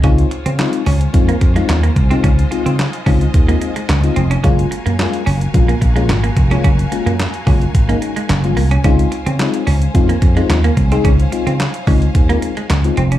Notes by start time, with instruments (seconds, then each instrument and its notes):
0.03 slap bass C#2, fm electric piano G#3 C4 D#4 F4, clean electric guitar C#4, string section F4 C5 C#5 G#5, kick, closed hi-hat
0.18 closed hi-hat
0.31 muted clean electric guitar stroke, closed hi-hat
0.46 slap bass C#3, clean electric guitar C4, closed hi-hat
0.58 fm electric piano G#3 C4 D#4 F4, snare, clap, closed hi-hat
0.73 closed hi-hat
0.86 slap bass C#2, clean electric guitar C#4, open hi-hat
1.01 closed hi-hat
1.13 slap bass F2, fm electric piano G#3 C4 D#4 F4, kick, closed hi-hat
1.29 clean electric guitar A#3, closed hi-hat
1.41 slap bass F2, muted clean electric guitar stroke, kick, closed hi-hat
1.56 fm electric piano G#3 C4 D#4 F4, clean electric guitar G#3, closed hi-hat
1.69 slap bass D#2, snare, clap, closed hi-hat
1.83 clean electric guitar A#3, closed hi-hat
1.96 slap bass C2, muted clean electric guitar stroke, kick, closed hi-hat
2.11 fm electric piano G#3 C4 D#4 F4, clean electric guitar C4, closed hi-hat
2.24 slap bass C#2, clean electric guitar C#4, string section D#5, kick, closed hi-hat
2.39 closed hi-hat
2.51 fm electric piano G#3 C4 D#4 F4, muted clean electric guitar stroke, closed hi-hat
2.66 slap bass C#3, clean electric guitar C4, closed hi-hat
2.79 snare, clap, closed hi-hat
2.93 closed hi-hat
3.06 slap bass C#2, fm electric piano G#3 C4 D#4 F4, clean electric guitar C#4, kick, open hi-hat
3.21 closed hi-hat
3.34 slap bass D#2, kick, closed hi-hat
3.48 fm electric piano G#3 C4 D#4 F4, clean electric guitar A#3, closed hi-hat
3.61 muted clean electric guitar stroke, closed hi-hat
3.76 clean electric guitar G#3, closed hi-hat
3.89 slap bass C#2, muted clean electric guitar stroke, snare, clap, closed hi-hat
4.03 fm electric piano G#3 C4 D#4 F4, closed hi-hat
4.16 slap bass F1, clean electric guitar C4, closed hi-hat
4.31 clean electric guitar C#4, closed hi-hat
4.44 slap bass F#1, fm electric piano G#3 A#3 C#4 F4, clean electric guitar C#4, string section F#4 A#4 F5, kick, closed hi-hat
4.59 closed hi-hat
4.71 muted clean electric guitar stroke, closed hi-hat
4.86 slap bass F#2, clean electric guitar A#3, closed hi-hat
4.99 fm electric piano G#3 A#3 C#4 F4, snare, clap, closed hi-hat
5.13 closed hi-hat
5.26 slap bass F#1, clean electric guitar C#4, open hi-hat
5.41 closed hi-hat
5.54 slap bass A#1, fm electric piano G#3 A#3 C#4 F4, kick, closed hi-hat
5.68 clean electric guitar A#3, closed hi-hat
5.81 slap bass A#1, muted clean electric guitar stroke, kick, closed hi-hat
5.96 fm electric piano G#3 A#3 C#4 F4, clean electric guitar G#3, closed hi-hat
6.09 slap bass G#1, snare, clap, closed hi-hat
6.24 clean electric guitar A#3, closed hi-hat
6.37 slap bass F1, muted clean electric guitar stroke, kick, closed hi-hat
6.51 fm electric piano G#3 A#3 C#4 F4, clean electric guitar C#4, closed hi-hat
6.64 slap bass F#1, clean electric guitar C#4, kick, closed hi-hat
6.79 closed hi-hat
6.92 fm electric piano G#3 A#3 C#4 F4, muted clean electric guitar stroke, closed hi-hat
7.06 slap bass F#2, clean electric guitar A#3, closed hi-hat
7.20 snare, clap, closed hi-hat
7.34 closed hi-hat
7.46 slap bass F#1, fm electric piano G#3 A#3 C#4 F4, clean electric guitar C#4, kick, open hi-hat
7.62 closed hi-hat
7.75 slap bass G#1, kick, closed hi-hat
7.89 fm electric piano G#3 A#3 C#4 D#4, clean electric guitar A#3, closed hi-hat
8.02 muted clean electric guitar stroke, closed hi-hat
8.16 clean electric guitar G#3, closed hi-hat
8.29 slap bass F#1, muted clean electric guitar stroke, snare, clap, closed hi-hat
8.44 fm electric piano G#3 A#3 C#4 F4, closed hi-hat
8.57 slap bass C2, clean electric guitar A#3, open hi-hat
8.71 clean electric guitar C#4, closed hi-hat
8.84 slap bass C#2, fm electric piano G#3 C4 D#4 F4, clean electric guitar C#4, string section C#4 C5 F5, kick, closed hi-hat
8.99 closed hi-hat
9.12 muted clean electric guitar stroke, closed hi-hat
9.26 slap bass C#3, clean electric guitar C4, closed hi-hat
9.39 fm electric piano G#3 C4 D#4 F4, snare, clap, closed hi-hat
9.54 closed hi-hat
9.67 slap bass C#2, clean electric guitar C#4, open hi-hat
9.82 closed hi-hat
9.94 slap bass F2, fm electric piano G#3 C4 D#4 F4, kick, closed hi-hat
10.09 clean electric guitar A#3, closed hi-hat
10.22 slap bass F2, muted clean electric guitar stroke, kick, closed hi-hat
10.36 fm electric piano G#3 C4 D#4 F4, clean electric guitar G#3, closed hi-hat
10.50 slap bass D#2, snare, clap, closed hi-hat
10.64 clean electric guitar A#3, closed hi-hat
10.77 slap bass C2, muted clean electric guitar stroke, kick, closed hi-hat
10.91 fm electric piano G#3 C4 D#4 G#4, clean electric guitar C4, closed hi-hat
11.05 slap bass C#2, clean electric guitar C#4, kick, closed hi-hat
11.20 closed hi-hat
11.32 fm electric piano G#3 C4 D#4 F4, muted clean electric guitar stroke, closed hi-hat
11.47 slap bass C#3, clean electric guitar C4, closed hi-hat
11.60 snare, clap, closed hi-hat
11.74 closed hi-hat
11.87 slap bass C#2, fm electric piano G#3 C4 D#4 F4, clean electric guitar C#4, kick, open hi-hat
12.02 closed hi-hat
12.15 slap bass D#2, kick, closed hi-hat
12.29 fm electric piano G#3 C4 D#4 F4, clean electric guitar A#3, closed hi-hat
12.42 muted clean electric guitar stroke, closed hi-hat
12.57 clean electric guitar G#3, closed hi-hat
12.70 slap bass C#2, muted clean electric guitar stroke, snare, clap, closed hi-hat
12.84 fm electric piano G#3 C4 D#4 F4, closed hi-hat
12.97 slap bass F1, clean electric guitar C4, closed hi-hat
13.12 clean electric guitar C#4, closed hi-hat